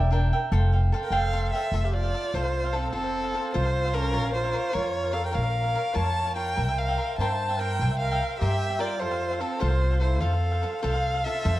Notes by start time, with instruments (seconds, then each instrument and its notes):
Already playing: upright bass E1, cavaquinho A#4 E5 G5
0.11 cavaquinho D4 A#4 E5 G5
0.33 cavaquinho A#4 E5 G5
0.52 upright bass F1, cavaquinho A4 C5 F5 G5
0.72 cavaquinho C5 F5 G5
0.92 cavaquinho A4 C5 F5 G5
1.03 trumpet A#4, violin G5
1.10 upright bass F1, cavaquinho A4 C5 F5 G5, trumpet A4, violin F5
1.33 cavaquinho A4 C5 F5 G5
1.52 trumpet A4, cavaquinho C5 F5 G5, violin E5
1.72 upright bass F1, cavaquinho F4 A4 C5 F5
1.84 trumpet G4, cavaquinho A4 C5 F5, violin E5
1.93 trumpet F4, violin D5
2.03 cavaquinho A4 C5 F5
2.14 cavaquinho F4 A4 C5 F5
2.34 upright bass C2, cavaquinho F4 A4 C5 F5, trumpet F4, violin C5
2.44 cavaquinho A4 C5 F5
2.64 cavaquinho A4 C5 F5
2.73 trumpet C4, cavaquinho F4 A4 C5 F5, violin A4
2.92 upright bass F1, trumpet C4, cavaquinho F4 A4 C5 F5, violin A4
3.03 cavaquinho A4 C5 F5
3.24 cavaquinho A4 C5 F5
3.34 cavaquinho F4 A4 C5 F5
3.54 upright bass C2, cavaquinho F4 A4 C5 F5, trumpet F4, violin C5
3.64 cavaquinho A4 C5 F5
3.85 cavaquinho A4 C5 F5
3.93 trumpet C#4, cavaquinho F4 A4 C5 F5, violin A#4
4.13 upright bass A#1, cavaquinho F4 A#4 C#5 F5
4.24 cavaquinho A#4 C#5 F5
4.34 trumpet F4, violin C5
4.44 cavaquinho A#4 C#5 F5
4.53 cavaquinho F4 A#4 C#5 F5
4.72 upright bass F2, cavaquinho F4 A#4 C#5 F5, trumpet F4, violin C#5
4.83 cavaquinho A#4 C#5 F5
5.03 cavaquinho A#4 C#5 F5
5.11 cavaquinho F4 A#4 C#5 F5, trumpet A4, violin F5
5.26 trumpet A#4, violin G5
5.31 upright bass A#1, cavaquinho F4 A#4 C#5 F5, trumpet A#4, violin F5
5.43 cavaquinho A#4 C#5 F5
5.63 cavaquinho A#4 C#5 F5
5.75 cavaquinho F4 A#4 C#5 F5
5.93 upright bass F2, cavaquinho F4 A#4 C#5 F5, trumpet C#5, violin A5
6.04 cavaquinho A#4 C#5 F5
6.25 cavaquinho A#4 C#5 F5
6.35 cavaquinho F4 A#4 C#5 F5, trumpet A#4, violin G5
6.56 upright bass C2, cavaquinho A#4 C5 E5 G5
6.68 cavaquinho C5 E5 G5
6.76 trumpet A#4, violin F5
6.88 cavaquinho C5 E5 G5
6.98 cavaquinho A#4 C5 E5 G5
7.18 upright bass G2, cavaquinho A#4 C5 E5 G5, trumpet C5, violin A5
7.29 cavaquinho C5 E5 G5
7.48 cavaquinho C5 E5 G5
7.58 trumpet A#4, cavaquinho A#4 C5 E5 G5, violin G5
7.79 upright bass C2, cavaquinho A#4 C5 E5 G5
7.90 cavaquinho C5 E5 G5
7.99 trumpet A#4, violin F5
8.12 cavaquinho C5 E5 G5
8.21 cavaquinho A#4 C5 E5 G5
8.39 upright bass G2, trumpet G4, cavaquinho A#4 C5 E5 G5, violin E5
8.51 cavaquinho C5 E5 G5
8.70 cavaquinho C5 E5 G5
8.79 trumpet F4, cavaquinho A#4 C5 E5 G5, violin D5
8.99 upright bass F2, cavaquinho F4 A4 C5 F5, trumpet F4, violin C5
9.11 cavaquinho A4 C5 F5
9.31 cavaquinho A4 C5 F5
9.40 trumpet C4, cavaquinho F4 A4 C5 F5, violin A4
9.59 upright bass C2, cavaquinho F4 A4 C5 F5, trumpet F4, violin C5
9.69 cavaquinho A4 C5 F5
9.91 cavaquinho A4 C5 F5
10.00 trumpet E4, cavaquinho F4 A4 C5 F5, violin C5
10.20 upright bass F2, cavaquinho F4 A4 C5 F5, trumpet A4, violin F5
10.31 cavaquinho A4 C5 F5
10.51 cavaquinho A4 C5 F5
10.62 cavaquinho F4 A4 C5 F5
10.82 upright bass C2, cavaquinho F4 A4 C5 F5, trumpet A4, violin F5
10.94 cavaquinho A4 C5 F5
11.14 cavaquinho A4 C5 F5
11.23 cavaquinho F4 A4 C5, trumpet A4, violin E5
11.28 cavaquinho F5
11.44 upright bass F2, cavaquinho F4 A4 C5 F5
11.55 cavaquinho C5 F5